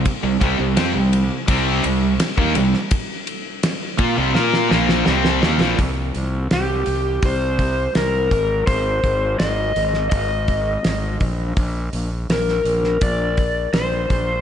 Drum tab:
RD |x-x-x-x-x-x-x-x-|x-x-x-x---------|----------------|----------------|
HH |----------------|----------------|o-o-o-o-o-o-o-o-|o-o-o-o-o-o-o-o-|
SD |--o-o-------o--o|----o---oooooooo|----o-------o---|----o--o----o---|
BD |o-o-----o----o--|o-----o---------|o-------o-o---o-|o-o-----o-o---o-|

RD |----------------|
HH |o-o-o-o-o-o-o-o-|
SD |----oo-o----o---|
BD |o-------o-o---o-|